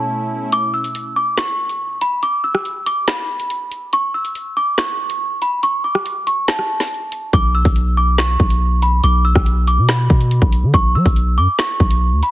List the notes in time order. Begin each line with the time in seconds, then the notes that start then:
Already playing: B2 A3 C#4 E4 A5
0.52 D6, closed hi-hat
0.74 E6
0.84 closed hi-hat
0.95 closed hi-hat
1.16 D6
1.38 C#6, finger snap, snare, closed hi-hat
1.69 closed hi-hat
2.01 B5, closed hi-hat
2.23 D6, closed hi-hat
2.44 E6
2.55 cross-stick
2.65 closed hi-hat
2.86 D6, closed hi-hat
3.08 B5, finger snap, snare, closed hi-hat
3.40 closed hi-hat
3.50 closed hi-hat
3.72 closed hi-hat
3.93 C#6, closed hi-hat
4.14 E6
4.25 closed hi-hat
4.35 closed hi-hat
4.57 D6
4.78 C#6, finger snap, snare, closed hi-hat
5.10 closed hi-hat
5.42 B5, closed hi-hat
5.63 C#6, closed hi-hat
5.84 D6
5.95 cross-stick
6.06 closed hi-hat
6.27 C#6, closed hi-hat
6.48 A5, finger snap, snare, closed hi-hat
6.59 cross-stick
6.80 snare, closed hi-hat
6.87 closed hi-hat
6.94 closed hi-hat
7.12 closed hi-hat
7.33 B1 D6, kick, closed hi-hat
7.55 E6
7.65 B1, kick, closed hi-hat
7.76 closed hi-hat
7.97 D6
8.18 C#6, finger snap, snare, closed hi-hat
8.40 B1, kick
8.50 closed hi-hat
8.82 B5, closed hi-hat
9.04 B1 D6, closed hi-hat
9.25 E6
9.35 B1, kick, cross-stick
9.46 closed hi-hat
9.67 D6, closed hi-hat
9.78 B2
9.89 B5, finger snap, snare, closed hi-hat
10.10 B2, kick
10.21 closed hi-hat
10.31 closed hi-hat
10.42 B1, kick
10.52 closed hi-hat
10.63 D3
10.74 B1 C#6, kick, closed hi-hat
10.95 F#3 E6
11.06 B1, kick, closed hi-hat
11.16 closed hi-hat
11.38 F#2 D6
11.59 C#6, finger snap, snare, closed hi-hat
11.80 B1, kick
11.91 closed hi-hat
12.12 D2
12.23 B5, closed hi-hat